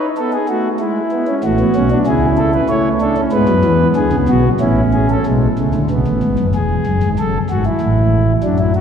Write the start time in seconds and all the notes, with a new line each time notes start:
0.18 B3 A4
0.33 G#4
0.49 A3 F#4
0.80 G#3 E4
1.12 B3
1.28 C#4
1.44 A1 A2 A3 F#4
1.60 B3
1.76 B1 B2 C#4
1.91 D4
2.06 C#2 C#3 E4 G#4
2.38 A4
2.54 B4
2.69 A3 E4 C#5
3.01 D4 A4
3.17 C#4
3.32 G#2 G#3 B3 B4
3.48 F#2 F#3
3.64 E2 E3
3.96 D2 D3 G#4
4.13 C#2 C#3
4.29 B1 B2 F#4
4.60 A1 A2 C#4 E4
4.93 G#4
5.10 A4
5.26 B1 B2 G#3
5.59 C#2 C#3 A3
5.74 D2 D3
5.90 B1 B2 B3
6.07 A1 A2
6.23 G#1 G#2
6.39 F#1 F#2
6.55 E1 E2 G#4
6.86 F#1 F#2
7.03 G#1 G#2
7.19 F#1 F#2 A4
7.50 G#1 G#2 F#4
7.66 E4
7.81 A1 A2
8.43 F#2 F#3 D4
8.59 E4
8.75 F#4